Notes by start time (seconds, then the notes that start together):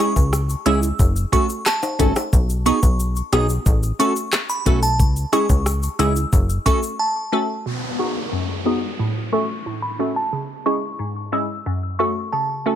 0.00 G#3 C#4 E4 G#4 C#6, cross-stick, closed hi-hat, shaker
0.16 C#2, kick, shaker
0.33 cross-stick, shaker
0.49 shaker
0.66 C#2 G#3 C#4 E4 G#4 E6, closed hi-hat, shaker
0.82 muted steel-string acoustic guitar stroke, shaker
0.99 F#1, kick, shaker
1.16 shaker
1.32 A3 C#4 F#4 A4 C#6, kick, closed hi-hat, shaker
1.49 shaker
1.66 A5, cross-stick, clap, shaker
1.83 high timbale, shaker
1.99 G#1 A3 C#4 F#4 A4, kick, closed hi-hat, shaker
2.16 cross-stick, high timbale, shaker
2.33 B1, kick, shaker
2.50 shaker
2.66 B3 D#4 F#4 G#4 C#6, closed hi-hat, shaker
2.83 B1, kick, shaker
3.00 shaker
3.16 shaker
3.32 B1 B3 D#4 F#4 G#4 D#6, cross-stick, closed hi-hat, shaker
3.49 shaker
3.66 A1, kick, shaker
3.83 shaker
3.99 A3 C#4 F#4 A4 C#6, closed hi-hat, shaker
4.16 shaker
4.33 cross-stick, clap, shaker
4.49 B5, shaker
4.66 B1 A3 C#4 F#4 A4, kick, closed hi-hat, shaker
4.83 A5, muted steel-string acoustic guitar stroke, shaker
4.99 C#2, kick, shaker
5.16 shaker
5.32 G#3 C#4 E4 G#4 C#6, cross-stick, closed hi-hat, shaker
5.49 C#2, kick, shaker
5.66 cross-stick, shaker
5.83 shaker
5.99 C#2 G#3 C#4 E4 G#4 E6, closed hi-hat, shaker
6.16 muted steel-string acoustic guitar stroke, shaker
6.33 F#1, kick, shaker
6.49 shaker
6.66 A3 C#4 F#4 A4 C#6, kick, closed hi-hat, shaker
6.83 shaker
6.99 A5
7.32 A3 C#4 F#4 A4
7.66 B2, downlifter
7.99 B3 D#4 F#4 G#4 C#6
8.32 F#2
8.66 B3 D#4 F#4 G#4 D#6
8.99 A2
9.32 A3 C#4 F#4 A4 C#6
9.66 A2
9.82 B5
9.99 A3 C#4 F#4 A4
10.16 A5
10.33 C#3
10.66 G#3 C#4 E4 G#4 C#6
10.99 G#2
11.32 G#3 C#4 E4 G#4 E6
11.66 F#2
11.99 A3 C#4 F#4 A4 C#6
12.32 C#3 A5
12.66 A3 C#4 F#4 A4